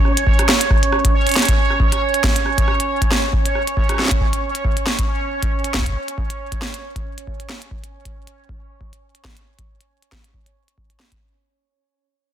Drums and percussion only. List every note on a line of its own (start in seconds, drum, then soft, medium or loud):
0.05 cross-stick soft
0.17 closed hi-hat medium
0.27 kick loud
0.39 cross-stick medium
0.39 closed hi-hat soft
0.49 cross-stick medium
0.49 snare loud
0.61 closed hi-hat medium
0.70 kick loud
0.70 cross-stick soft
0.83 closed hi-hat medium
0.92 cross-stick medium
1.05 kick loud
1.05 closed hi-hat medium
1.27 closed hi-hat soft
1.29 closed hi-hat soft
1.32 closed hi-hat soft
1.34 snare loud
1.34 closed hi-hat soft
1.36 closed hi-hat soft
1.39 cross-stick medium
1.39 closed hi-hat soft
1.42 closed hi-hat soft
1.45 kick loud
1.45 closed hi-hat soft
1.49 closed hi-hat medium
1.70 cross-stick soft
1.80 kick loud
1.92 cross-stick soft
1.92 closed hi-hat medium
2.14 closed hi-hat soft
2.24 kick loud
2.24 snare loud
2.36 closed hi-hat medium
2.46 cross-stick soft
2.58 kick loud
2.58 closed hi-hat soft
2.68 cross-stick medium
2.80 closed hi-hat medium
3.02 kick loud
3.02 closed hi-hat soft
3.11 cross-stick medium
3.11 snare loud
3.33 kick loud
3.46 closed hi-hat soft
3.55 cross-stick soft
3.67 closed hi-hat medium
3.77 kick loud
3.89 cross-stick medium
3.89 closed hi-hat soft
3.92 cross-stick medium
3.94 cross-stick soft
3.97 cross-stick soft
3.99 cross-stick medium
3.99 snare medium
4.02 snare medium
4.05 snare medium
4.08 kick loud
4.08 snare loud
4.08 closed hi-hat medium
4.21 kick loud
4.33 closed hi-hat soft
4.55 closed hi-hat medium
4.65 kick loud
4.77 closed hi-hat soft
4.86 snare loud
4.99 kick loud
4.99 closed hi-hat medium
5.43 kick loud
5.43 closed hi-hat medium
5.64 closed hi-hat soft
5.74 kick soft
5.74 snare loud
5.78 kick medium
5.81 kick medium
5.86 kick medium
5.86 closed hi-hat medium
5.89 kick medium
5.93 kick medium
6.08 closed hi-hat soft
6.18 kick loud
6.30 closed hi-hat medium
6.52 kick medium
6.52 closed hi-hat soft
6.62 snare loud
6.74 closed hi-hat medium
6.96 kick loud
6.96 closed hi-hat soft
7.18 closed hi-hat medium
7.27 kick medium
7.40 closed hi-hat soft
7.49 snare loud
7.62 closed hi-hat medium
7.71 kick loud
7.84 closed hi-hat soft
8.05 kick loud
8.05 closed hi-hat medium
8.27 closed hi-hat soft
8.49 kick loud
8.81 kick medium
8.93 closed hi-hat medium
9.15 closed hi-hat soft
9.24 kick loud
9.24 snare loud
9.37 closed hi-hat medium
9.59 kick medium
9.59 closed hi-hat soft
9.81 closed hi-hat medium
10.02 closed hi-hat soft
10.12 kick loud
10.12 snare loud
10.24 closed hi-hat medium
10.34 kick medium
10.46 closed hi-hat soft
10.68 closed hi-hat medium
10.78 kick loud
10.90 closed hi-hat soft
11.00 snare loud
11.12 kick medium
11.12 closed hi-hat medium